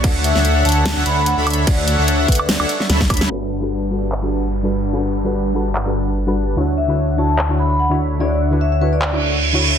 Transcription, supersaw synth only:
X:1
M:4/4
L:1/16
Q:"Swing 16ths" 1/4=147
K:D
V:1 name="Supersaw synth"
[DAcef]3 [DAcef]3 [DAcef] z2 [DAcef] [DAcef] z2 [DAceb]3 | [DAcef]3 [DAcef]3 [DAcef] z2 [DAcef] z2 [DAceb]4 | [G,DBfa]3 [G,DBfa]3 [G,DBfa] z2 [G,DBfa] [G,DBfa] z2 [G,DBfa]3 | [G,DBfa]3 [G,DBfa]3 [G,DBfa] z2 [G,DBfa] [G,DBfa] z2 [G,DBfa]3 |
[D,Dcef]3 [D,Dcef]3 [D,Dcef] z2 [D,Dcef] [D,Dcef] z2 [D,Dceb]3 | [D,Dcef]3 [D,Dcef]3 [D,Dcef] z2 [D,Dcef] [D,Dcef] z2 [D,Dceb]3 |]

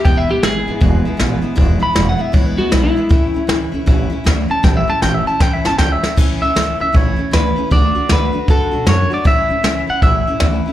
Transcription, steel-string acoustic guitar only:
X:1
M:4/4
L:1/8
Q:"Swing" 1/4=157
K:A
V:1 name="Steel-string acoustic guitar"
[E,,B,,E,G,B,E] [E,G,B,E] [E,G,B,E] [E,G,B,E] [E,,B,,E,G,B,E] [E,G,B,E] [E,G,B,E] [E,G,B,E] | [E,,B,,E,G,B,E] [E,G,B,E] [E,G,B,E] [E,G,B,E] [E,,B,,E,G,B,E] [E,G,B,E] [E,G,B,E] [E,G,B,E] | [A,,E,A,CE] [A,CE] [E,A,CE] [A,CE] [A,,E,A,CE] [A,CE] [E,A,CE] [A,CE] | [A,,E,A,CE] [A,CE] [E,A,CE] [A,CE] [A,,E,A,CE] [A,CE] [E,A,CE] [A,CE] |
[A,,E,A,CE] [A,CE] [E,A,CE] [A,CE] [A,,E,A,CE] [A,CE] [E,A,CE] [A,CE] | [D,A,DF] [A,DF] [D,A,DF] [A,DF] [D,A,DF] [A,DF] [D,A,DF] [A,DF] | [A,,E,A,CE] [A,CE] [E,A,CE] [A,CE] [A,,E,A,CE] [A,CE] [E,A,CE] [A,CE] |]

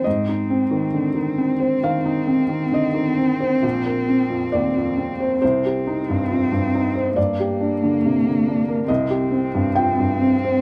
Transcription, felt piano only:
X:1
M:4/4
L:1/16
Q:1/4=68
K:Cm
V:1 name="Felt piano"
e8 f4 e2 z2 | z4 d4 c8 | d8 e4 g4 |]
V:2 name="Felt piano" clef=bass
A,, E C E, D, E, C c E, E C E, D, E, C c | B,,, B C F,, E,, F,, C c C,, G E G,, F,, G,, E c | G,, G D D, C, D, D B C,, G C G,, F,, G,, C c |]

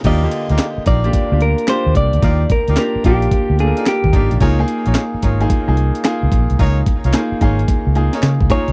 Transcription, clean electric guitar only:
X:1
M:4/4
L:1/16
Q:"Swing 16ths" 1/4=110
K:Eb
V:1 name="Clean electric guitar"
e6 d4 B2 c2 d2- | d2 B2 B2 G4 A2 G3 z | z16 | z12 z2 _d2 |]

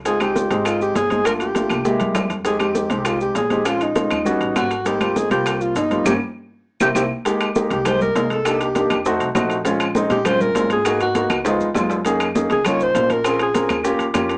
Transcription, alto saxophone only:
X:1
M:4/4
L:1/8
Q:1/4=200
K:Cphr
V:1 name="Alto saxophone"
A G3 F G A2 | B G4 z3 | A G3 F G A2 | F E4- E ^F2 |
G2 A G2 F E2 | G z4 G G z | [K:Ab] z3 G c B2 =A- | =A G3 z4 |
z3 G c B2 A- | A _G3 z4 | z3 A d c2 B- | B A3 z4 |]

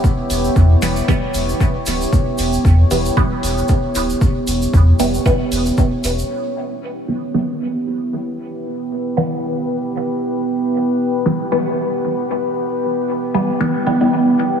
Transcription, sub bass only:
X:1
M:4/4
L:1/8
Q:"Swing 16ths" 1/4=115
K:Edor
V:1 name="Sub bass" clef=bass
z E,,, E,, E,,, z E,,, z D,,, | z E,,, E,, E,,, z E,,, z D,,, | z E,,, E,, E,,, z E,,, z E,,, | z8 |
z8 | z8 | z8 |]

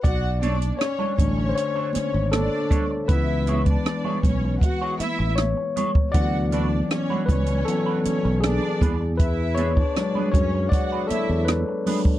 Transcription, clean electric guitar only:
X:1
M:4/4
L:1/16
Q:1/4=79
K:Bdor
V:1 name="Clean electric guitar"
z2 [A,DAc] z2 [A,DAc] z3 [A,DAc] z4 [A,DAc] z | z2 [B,EGc] z2 [B,EGc] z3 [B,EGc] z4 [B,EGc] z | z2 [A,DFB] z2 [A,DFB] z3 [A,DFB] z4 [B,DGB] z | z2 [B,DGB] z2 [B,DGB] z3 [B,DGB] z4 [B,DGB] z |]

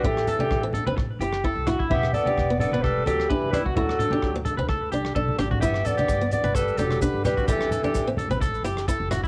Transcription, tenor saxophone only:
X:1
M:4/4
L:1/8
Q:"Swing 16ths" 1/4=129
K:Ador
V:1 name="Tenor saxophone" clef=bass
E,3 z4 z | B, B,2 B, G, F, E, G, | F,3 z4 z | B, B,2 B, G, F, D, G, |
E,3 z4 z |]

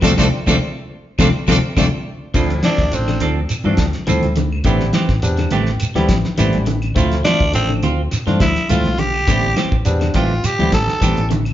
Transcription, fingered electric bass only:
X:1
M:4/4
L:1/16
Q:"Swing 16ths" 1/4=104
K:Am
V:1 name="Fingered electric bass" clef=bass
D,, D,, z D,, z4 D,, z D,, z D,, z3 | D,,2 z D,, A,,,2 D,,2 z G,, D,, z D,, D,,3 | A,,,2 z A,,, E,,2 A,,,2 z D,, A,,, z A,,, A,,,3 | D,,2 z D,, A,,,2 D,,2 z G,, D,, z D,, B,,,3 |
A,,,2 z A,,, E,,2 A,,,2 z D,, A,,, z A,,, A,,,3 |]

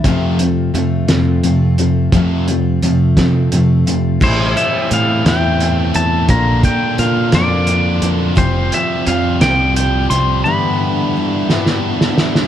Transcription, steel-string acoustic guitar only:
X:1
M:6/8
L:1/8
Q:3/8=58
K:Flyd
V:1 name="Steel-string acoustic guitar"
[F,,C,F,A,CF] [F,A,CF] [F,A,CF] [F,,C,F,A,CF] [F,A,CF] [F,A,CF] | [F,,C,F,A,CF] [F,A,CF] [F,A,CF] [F,,C,F,A,CF] [F,A,CF] [F,A,CF] | [A,,E,G,CE]2 [E,G,C] [A,,E,G,CE]2 [G,CE] | [_B,,D,_B,DF]2 [D,B,DF] [B,,D,B,DF]2 [B,DF] |
[F,G,CF]2 [F,G,CF] [F,G,CF]2 [G,CF] | [G,,D,E,G,B,E]2 [E,G,B,E] [G,,D,E,G,B,E]2 [E,G,B,E] |]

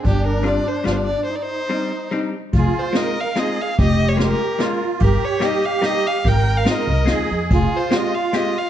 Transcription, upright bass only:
X:1
M:3/4
L:1/8
Q:1/4=144
K:Cm
V:1 name="Upright bass" clef=bass
G,,,4 G,,,2 | z6 | [K:Fm] F,,, z4 z | F,,,4 z2 |
G,,, z4 z | A,,,3 C,, E,, F,, | F,,, z4 z |]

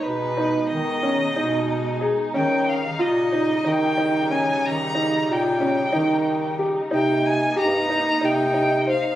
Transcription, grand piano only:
X:1
M:7/8
L:1/8
Q:1/4=92
K:Ebmix
V:1 name="Grand piano"
E E2 D E2 A | D2 F E E E D- | D E2 D E2 G | E2 G E E E c |]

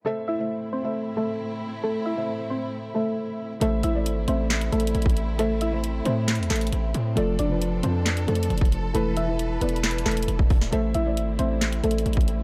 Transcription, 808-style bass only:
X:1
M:4/4
L:1/16
Q:1/4=135
K:Am
V:1 name="808-style bass" clef=bass
z16 | z16 | A,,,2 A,,,2 ^G,,,2 A,,,4 A,,,2 A,,,4- | A,,,6 A,,3 E,, A,,,2 A,,,2 A,,2 |
F,,,2 F,,,4 F,,4 F,,2 F,,,4 | E,,,6 E,,,4 E,,,2 E,,,3 D,,, | A,,,2 A,,,2 ^G,,,2 A,,,4 A,,,2 A,,,4 |]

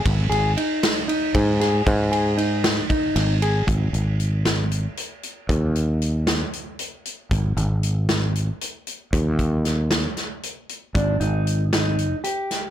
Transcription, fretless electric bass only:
X:1
M:7/8
L:1/8
Q:1/4=116
K:Eb
V:1 name="Fretless electric bass" clef=bass
A,,, A,,, z3 A,,2 | A,,4 z A,,,2 | A,,, A,,,4 z2 | E,,4 z3 |
A,,, A,,,4 z2 | E,,4 z3 | A,,, A,,,4 z2 |]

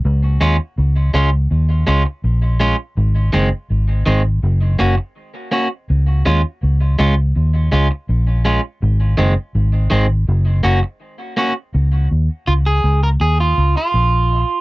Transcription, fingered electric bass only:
X:1
M:4/4
L:1/16
Q:1/4=82
K:Db
V:1 name="Fingered electric bass" clef=bass
D,,2 E,, z D,,2 D,,2 E,,2 D,, z B,,,3 z | A,,,2 G,,, z A,,,2 A,,,2 G,,,2 G,,, z4 z | D,,2 E,, z D,,2 D,,2 E,,2 D,, z B,,,3 z | A,,,2 G,,, z A,,,2 A,,,2 G,,,2 G,,, z4 z |
D,,2 E,, z D,,2 D,,2 E,,2 D,, z B,,,3 z |]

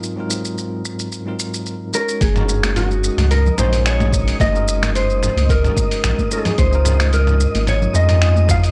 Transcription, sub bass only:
X:1
M:4/4
L:1/16
Q:"Swing 16ths" 1/4=110
K:Gblyd
V:1 name="Sub bass" clef=bass
z16 | G,,,6 z D,,2 z B,,,4- B,,, z | G,,,6 z D,,2 z3 B,,, z3 | D,,6 z A,,,2 z F,,4- F,, z |]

